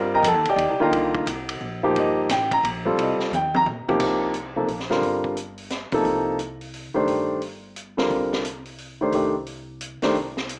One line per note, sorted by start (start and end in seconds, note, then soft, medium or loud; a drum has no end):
0.00 0.22 G2 medium
0.00 0.21 G3 medium
0.00 0.22 C4 medium
0.00 0.22 F4 medium
0.00 0.13 A#4 medium
0.00 0.10 D#5 medium
0.14 0.25 A#4 medium
0.14 0.25 D#5 medium
0.14 0.25 G5 medium
0.14 0.25 A#5 medium
0.23 0.34 F2 medium
0.23 hi-hat pedal medium
0.23 ride medium
0.28 0.47 A4 medium
0.28 0.47 A5 medium
0.34 0.44 D#2 medium
0.45 0.56 C2 medium
0.45 ride soft
0.49 0.79 G4 medium
0.49 0.79 D5 medium
0.49 0.79 D#5 medium
0.49 0.80 G5 medium
0.56 0.69 D#2 medium
0.56 ride medium
0.69 0.79 C2 medium
0.80 0.90 A#1 medium
0.80 1.25 D3 medium
0.80 1.24 D#3 medium
0.80 1.24 A#3 medium
0.80 1.25 F4 medium
0.80 1.25 A#4 medium
0.80 1.25 D#5 medium
0.80 1.25 G5 medium
0.80 1.25 A#5 medium
0.91 1.25 C2 medium
0.91 ride soft
1.15 kick medium
1.26 1.59 C2 medium
1.26 hi-hat pedal soft
1.26 ride medium
1.49 ride medium
1.61 1.94 A#1 medium
1.83 2.27 F3 medium
1.83 2.27 A#3 medium
1.83 2.27 D#4 medium
1.83 2.28 G4 medium
1.95 2.28 G1 medium
1.95 2.29 D#5 medium
1.95 ride soft
2.29 2.62 A1 medium
2.29 2.51 G5 medium
2.29 snare soft
2.29 hi-hat pedal medium
2.29 ride medium
2.51 2.64 A#5 medium
2.51 kick medium
2.51 ride soft
2.63 2.96 A#1 medium
2.63 ride medium
2.85 3.29 G3 medium
2.85 3.29 C4 medium
2.85 3.30 F4 medium
2.85 3.30 A4 medium
2.97 3.17 C2 medium
2.97 ride medium
3.02 3.32 D#5 medium
3.19 muted upright bass stroke soft
3.19 snare soft
3.31 3.65 D#2 medium
3.31 3.54 G5 medium
3.31 hi-hat pedal soft
3.31 high tom soft
3.54 3.63 A#5 loud
3.54 high tom medium
3.66 3.86 A#2 medium
3.66 floor tom medium
3.87 4.32 C3 medium
3.87 4.33 F3 medium
3.87 4.32 A#3 medium
3.87 4.33 D#4 medium
3.87 4.33 G4 medium
3.87 muted upright bass stroke soft
3.87 floor tom medium
4.00 4.64 C2 medium
4.00 kick medium
4.00 crash medium
4.34 closed hi-hat soft
4.56 4.67 C3 soft
4.56 4.67 F3 medium
4.56 4.68 A#3 soft
4.56 4.68 D#4 soft
4.56 4.68 A4 medium
4.67 4.99 A#1 medium
4.67 open hi-hat soft
4.79 snare soft
4.90 5.34 D3 medium
4.90 5.34 G3 medium
4.90 5.34 C4 medium
4.90 5.35 F4 medium
4.90 5.35 A#4 medium
4.90 snare soft
5.01 5.88 G1 medium
5.01 open hi-hat soft
5.24 kick soft
5.37 closed hi-hat soft
5.58 open hi-hat soft
5.70 snare soft
5.70 closed hi-hat soft
5.92 6.37 C3 medium
5.92 6.37 F3 medium
5.92 6.37 A#3 medium
5.92 6.37 D#4 medium
5.92 6.38 A4 medium
5.92 muted upright bass stroke soft
5.92 kick soft
5.92 open hi-hat soft
6.04 6.91 C2 medium
6.04 open hi-hat soft
6.39 closed hi-hat soft
6.61 open hi-hat soft
6.74 open hi-hat soft
6.94 7.05 C#2 medium
6.94 7.39 D#3 medium
6.94 7.39 A3 medium
6.94 7.40 D4 medium
6.94 7.40 G4 medium
6.94 7.40 C5 medium
7.06 8.05 G1 medium
7.06 open hi-hat soft
7.42 open hi-hat soft
7.76 closed hi-hat soft
7.97 8.42 D3 medium
7.97 8.42 G3 medium
7.97 8.42 C4 medium
7.97 8.42 F4 soft
7.97 8.43 A#4 medium
7.97 snare soft
8.10 9.09 C2 medium
8.10 open hi-hat soft
8.33 snare soft
8.45 closed hi-hat soft
8.65 open hi-hat soft
8.78 open hi-hat soft
9.01 9.12 D#3 medium
9.01 9.12 A3 medium
9.01 9.13 D4 medium
9.01 9.13 G4 medium
9.01 9.13 C5 medium
9.12 9.99 C2 medium
9.12 9.33 D#3 medium
9.12 9.33 A3 medium
9.12 9.33 D4 medium
9.12 9.33 G4 medium
9.12 9.33 C5 medium
9.12 open hi-hat soft
9.46 open hi-hat soft
9.81 closed hi-hat medium
10.02 10.14 D#3 medium
10.02 10.14 A3 medium
10.02 10.15 D4 medium
10.02 10.15 G4 medium
10.02 10.15 C5 medium
10.02 muted upright bass stroke soft
10.02 snare soft
10.02 open hi-hat soft
10.14 10.59 C2 medium
10.14 open hi-hat soft
10.37 snare soft
10.49 closed hi-hat soft